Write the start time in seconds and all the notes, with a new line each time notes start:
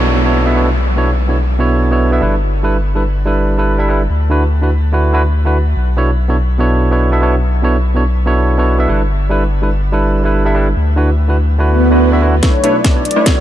Already playing: B1 B2 B3 D4 E4 A4 C#5, downlifter
0.24 B2 B3 D4 E4 A4 C#5
0.45 B2 B3 D4 E4 A4 E5
0.55 B2 B3 D4 E4 A4 C#5
0.96 B2 B3 D4 E4 A4 C#5
1.28 B2 B3 D4 E4 A4 C#5
1.58 B2 B3 D4 E4 A4 C#5
1.90 B2 B3 D4 E4 A4 C#5
2.11 B2 B3 D4 E4 A4 E5
2.21 G1 G3 D4 E4 A4 B4
2.63 G3 D4 E4 A4 B4
2.95 G3 D4 E4 A4 B4
3.25 G3 D4 E4 A4 B4
3.57 G3 D4 E4 A4 B4
3.78 G3 D4 E4 A4 E5
3.88 G3 D4 E4 A4 B4
4.10 D2
4.29 D3 D4 E4 F#4 B4
4.61 D3 D4 E4 F#4 B4
4.92 D3 D4 E4 F#4 B4
5.13 D3 D4 E4 F#4 B4
5.45 D3 D4 E4 F#4 B4
5.76 B1
5.96 B2 B3 D4 E4 A4 C#5
6.28 B2 B3 D4 E4 A4 C#5
6.58 B2 B3 D4 E4 A4 C#5
6.90 B2 B3 D4 E4 A4 C#5
7.11 B2 B3 D4 E4 A4 E5
7.21 B2 B3 D4 E4 A4 C#5
7.63 B2 B3 D4 E4 A4 C#5
7.94 B2 B3 D4 E4 A4 C#5
8.25 B2 B3 D4 E4 A4 C#5
8.57 B2 B3 D4 E4 A4 C#5
8.78 B2 B3 D4 E4 A4 E5
8.88 G1 G3 D4 E4 A4 B4
9.29 G3 D4 E4 A4 B4
9.61 G3 D4 E4 A4 B4
9.92 G3 D4 E4 A4 B4
10.24 G3 D4 E4 A4 B4
10.45 G3 D4 E4 A4 E5
10.54 G3 D4 E4 A4 B4
10.76 D2
10.96 D3 D4 E4 F#4 B4
11.28 D3 D4 E4 F#4 B4
11.58 D3 D4 E4 F#4 B4, swell
11.90 D3 D4 E4 F#4 B4
12.11 D3 D4 E4 F#4 E5
12.21 D3 D4 E4 F#4 B4
12.43 B1 A3 D4 E4 B4 C#5, kick, snare, closed hi-hat, riser
12.63 B2 A3 B3 D4 E4 A4 B4 C#5, closed hi-hat
12.75 D5
12.84 A3 D4 E4 B4 D5, kick, snare, closed hi-hat
12.95 B2 B3 D4 E4 A4 C#5
13.05 D5, closed hi-hat
13.11 closed hi-hat
13.16 A3 D4 E4 B4 C#5
13.25 B2 B3 D4 E4 A4 C#5, kick, snare, closed hi-hat
13.37 C#5